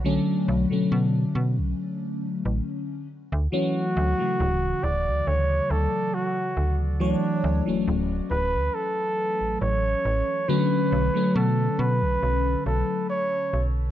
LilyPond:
<<
  \new Staff \with { instrumentName = "Flugelhorn" } { \time 4/4 \key b \minor \tempo 4 = 69 r1 | fis'4. d''8 cis''8 a'8 fis'8. r16 | d'4 r8 b'8 a'4 cis''4 | b'4 a'8 b'4 a'8 cis''8 r8 | }
  \new Staff \with { instrumentName = "FM electric piano" } { \clef bass \time 4/4 \key b \minor <d fis a cis'>8. <d fis a cis'>2~ <d fis a cis'>8. r8 | <e fis a cis'>8. <cis e fis a>2.~ <cis e fis a>16 | <e fis a cis''>8. <e fis a cis'>2.~ <e fis a cis'>16 | <d fis a cis'>8. <d fis a cis'>2.~ <d fis a cis'>16 | }
  \new Staff \with { instrumentName = "FM bass" } { \clef bass \time 4/4 \key b \minor b,,16 r16 b,,16 b,16 b,8 b,16 b,,16 r8. a,,16 r8. d,16 | r8 d,16 r16 d,,8 d,,16 d,16 d,8 d,16 r8. d,8~ | d,16 r16 d,16 d,,16 d,,8 d,,16 d,16 r8. a,,16 a,,8 a,,16 r16 | r8 b,,16 r16 b,8 b,16 b,,16 b,,8 b,,16 r8. b,,8 | }
>>